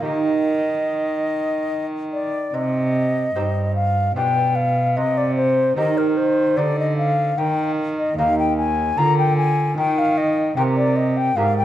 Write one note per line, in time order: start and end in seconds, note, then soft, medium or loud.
0.00 2.48 A#3 soft
0.00 2.48 D#4 soft
0.00 2.49 G4 soft
0.05 2.30 D#3 medium
0.05 2.30 D#3 soft
0.05 1.85 D#5 medium
2.13 2.56 D5 medium
2.54 3.31 C3 medium
2.54 3.75 D#5 medium
3.35 4.14 G2 medium
3.35 4.12 G2 medium
3.35 4.12 C4 soft
3.35 4.12 D#4 soft
3.35 4.12 G4 soft
3.75 4.15 F5 medium
4.15 4.98 B2 medium
4.15 4.93 B2 soft
4.15 4.93 D4 soft
4.15 4.93 F4 soft
4.15 4.93 G4 soft
4.15 4.57 G5 medium
4.56 4.98 F5 medium
4.96 5.76 C3 medium
4.96 5.73 C3 medium
4.96 5.19 D#5 loud
5.17 5.36 D5 medium
5.36 5.76 C5 medium
5.77 6.53 D#3 medium
5.77 6.59 D#3 medium
5.77 6.53 C4 soft
5.77 6.53 D#4 soft
5.77 6.53 G4 medium
5.77 5.99 D#5 loud
5.98 6.19 A#4 medium
6.17 6.59 C5 medium
6.57 7.37 D3 medium
6.57 7.33 D3 medium
6.57 7.34 C4 soft
6.57 7.34 D#4 soft
6.57 7.34 G4 medium
6.57 6.77 D5 medium
6.79 6.97 D#5 medium
6.98 7.40 F5 medium
7.38 8.16 D#3 medium
7.38 8.14 D#3 medium
7.38 7.71 G5 medium
7.98 8.18 D#5 medium
8.18 8.96 D#2 medium
8.18 8.94 D#2 medium
8.18 8.94 A#3 soft
8.18 8.94 D#4 soft
8.18 8.94 G4 medium
8.18 8.38 F5 loud
8.39 8.57 G5 medium
8.57 8.99 G#5 loud
8.98 9.74 D3 medium
8.98 9.76 D3 medium
8.98 9.74 A#3 soft
8.98 9.74 F4 soft
8.98 9.74 A#4 medium
8.98 9.18 A#5 loud
9.19 9.36 G5 medium
9.37 9.76 G#5 loud
9.78 10.53 D#3 medium
9.78 10.56 D#3 medium
9.78 10.00 G5 loud
9.99 10.19 F5 loud
10.18 10.56 D#5 medium
10.56 11.33 C3 medium
10.56 11.35 C3 medium
10.56 11.33 A#3 medium
10.56 11.33 G4 medium
10.56 11.33 A#4 medium
10.56 10.62 G5 loud
10.77 10.98 D5 medium
10.96 11.19 D#5 medium
11.17 11.38 G5 loud
11.36 11.65 G#2 medium
11.36 11.65 A#3 medium
11.36 11.65 G4 soft
11.36 11.65 A#4 medium
11.36 11.57 F5 loud
11.58 11.65 G5 medium